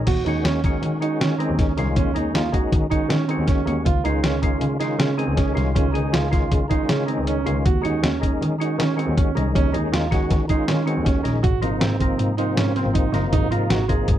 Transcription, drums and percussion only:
0.07 kick loud
0.07 closed hi-hat medium
0.07 crash medium
0.26 closed hi-hat medium
0.45 snare loud
0.45 closed hi-hat medium
0.64 kick medium
0.64 closed hi-hat medium
0.83 closed hi-hat medium
1.02 closed hi-hat medium
1.21 snare loud
1.21 closed hi-hat medium
1.40 closed hi-hat medium
1.59 kick loud
1.59 snare soft
1.59 closed hi-hat medium
1.78 snare soft
1.78 closed hi-hat medium
1.96 kick loud
1.96 closed hi-hat medium
2.16 closed hi-hat medium
2.35 snare loud
2.35 closed hi-hat medium
2.54 kick medium
2.54 closed hi-hat medium
2.72 kick loud
2.72 closed hi-hat medium
2.91 kick medium
2.91 closed hi-hat medium
3.10 snare medium
3.10 closed hi-hat medium
3.29 closed hi-hat medium
3.48 kick loud
3.48 snare soft
3.48 closed hi-hat medium
3.67 closed hi-hat medium
3.86 kick loud
3.86 closed hi-hat medium
4.05 closed hi-hat medium
4.24 snare loud
4.24 closed hi-hat medium
4.43 kick medium
4.43 closed hi-hat medium
4.61 closed hi-hat medium
4.81 snare soft
4.81 closed hi-hat medium
5.00 snare loud
5.00 closed hi-hat medium
5.19 closed hi-hat medium
5.37 kick loud
5.37 snare soft
5.37 closed hi-hat medium
5.57 snare soft
5.57 closed hi-hat medium
5.76 kick loud
5.76 closed hi-hat medium
5.95 closed hi-hat medium
6.14 snare loud
6.14 closed hi-hat medium
6.33 kick medium
6.33 snare soft
6.33 closed hi-hat medium
6.52 kick medium
6.52 closed hi-hat medium
6.71 kick medium
6.71 closed hi-hat medium
6.89 snare loud
6.89 closed hi-hat medium
7.08 closed hi-hat medium
7.27 closed hi-hat medium
7.47 closed hi-hat medium
7.66 kick loud
7.66 closed hi-hat medium
7.85 closed hi-hat medium
8.04 snare loud
8.04 closed hi-hat medium
8.23 kick medium
8.23 closed hi-hat medium
8.42 closed hi-hat medium
8.61 closed hi-hat medium
8.80 snare medium
8.80 closed hi-hat medium
8.99 closed hi-hat medium
9.18 kick loud
9.18 closed hi-hat medium
9.37 closed hi-hat medium
9.55 kick loud
9.55 closed hi-hat medium
9.74 closed hi-hat medium
9.94 snare loud
9.94 closed hi-hat medium
10.12 kick medium
10.12 snare soft
10.12 closed hi-hat medium
10.30 kick loud
10.30 snare soft
10.30 closed hi-hat medium
10.49 kick medium
10.49 closed hi-hat medium
10.68 snare medium
10.68 closed hi-hat medium
10.88 closed hi-hat medium
11.06 kick loud
11.06 snare soft
11.06 closed hi-hat medium
11.25 snare soft
11.25 closed hi-hat medium
11.44 kick loud
11.44 closed hi-hat medium
11.63 closed hi-hat medium
11.81 snare loud
11.81 closed hi-hat medium
12.00 kick medium
12.00 closed hi-hat medium
12.19 closed hi-hat medium
12.38 closed hi-hat medium
12.57 snare loud
12.57 closed hi-hat medium
12.76 snare soft
12.76 closed hi-hat medium
12.95 kick loud
12.95 closed hi-hat medium
13.14 snare soft
13.14 closed hi-hat medium
13.33 kick loud
13.33 closed hi-hat medium
13.52 closed hi-hat medium
13.70 snare loud
13.70 closed hi-hat medium
13.89 kick medium
13.89 closed hi-hat medium
14.08 kick loud
14.08 closed hi-hat medium

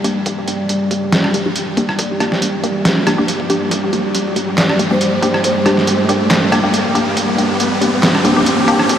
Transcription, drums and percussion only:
0.04 closed hi-hat medium
0.26 kick loud
0.26 closed hi-hat medium
0.48 closed hi-hat medium
0.69 closed hi-hat medium
0.91 kick medium
0.91 closed hi-hat soft
1.12 snare loud
1.12 closed hi-hat medium
1.24 cross-stick soft
1.34 closed hi-hat medium
1.56 closed hi-hat medium
1.77 kick loud
1.77 closed hi-hat medium
1.89 cross-stick soft
1.99 kick loud
1.99 closed hi-hat medium
2.20 cross-stick medium
2.20 closed hi-hat soft
2.32 snare soft
2.42 closed hi-hat medium
2.64 closed hi-hat soft
2.85 snare loud
2.85 closed hi-hat medium
3.07 cross-stick medium
3.07 closed hi-hat medium
3.28 closed hi-hat medium
3.40 kick medium
3.50 closed hi-hat medium
3.71 kick loud
3.71 closed hi-hat medium
3.93 closed hi-hat soft
4.15 closed hi-hat medium
4.36 kick medium
4.36 closed hi-hat soft
4.58 snare loud
4.58 clap medium
4.58 closed hi-hat medium
4.69 cross-stick medium
4.79 closed hi-hat medium
5.01 closed hi-hat medium
5.22 kick loud
5.22 closed hi-hat medium
5.34 cross-stick soft
5.44 kick loud
5.44 closed hi-hat medium
5.66 cross-stick medium
5.66 closed hi-hat medium
5.77 snare soft
5.87 closed hi-hat medium
6.09 closed hi-hat soft
6.31 snare loud
6.31 clap medium
6.31 closed hi-hat medium
6.52 cross-stick medium
6.52 closed hi-hat medium
6.74 closed hi-hat medium
6.85 kick medium
6.95 closed hi-hat medium
7.17 kick loud
7.17 closed hi-hat medium
7.39 closed hi-hat medium
7.60 closed hi-hat medium
7.82 kick medium
7.82 closed hi-hat medium
8.03 snare loud
8.03 clap medium
8.03 closed hi-hat medium
8.15 cross-stick medium
8.25 closed hi-hat medium
8.46 closed hi-hat medium
8.68 kick loud
8.68 closed hi-hat medium
8.79 cross-stick medium
8.89 kick loud
8.89 closed hi-hat medium

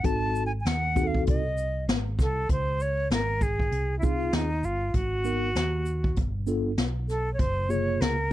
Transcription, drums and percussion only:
0.04 kick loud
0.04 closed hi-hat medium
0.35 shaker medium
0.65 snare loud
0.65 closed hi-hat medium
0.96 kick loud
0.96 closed hi-hat soft
0.96 shaker soft
1.14 kick medium
1.27 kick loud
1.27 closed hi-hat medium
1.58 closed hi-hat medium
1.58 shaker medium
1.88 snare loud
1.88 closed hi-hat medium
2.19 kick medium
2.19 snare soft
2.19 shaker medium
2.49 kick medium
2.49 closed hi-hat medium
2.80 shaker medium
3.10 snare loud
3.10 closed hi-hat medium
3.41 kick medium
3.41 shaker soft
3.59 kick medium
3.72 closed hi-hat medium
4.02 kick medium
4.02 shaker soft
4.32 snare loud
4.32 closed hi-hat medium
4.64 shaker soft
4.94 kick medium
4.94 closed hi-hat medium
5.25 shaker medium
5.55 snare loud
5.55 closed hi-hat medium
5.86 closed hi-hat soft
5.86 shaker soft
6.04 kick medium
6.16 kick loud
6.16 closed hi-hat medium
6.47 closed hi-hat soft
6.47 shaker medium
6.77 snare loud
6.77 closed hi-hat medium
7.09 snare soft
7.09 shaker soft
7.39 kick loud
7.39 closed hi-hat medium
7.70 shaker medium
8.01 snare loud
8.01 closed hi-hat medium

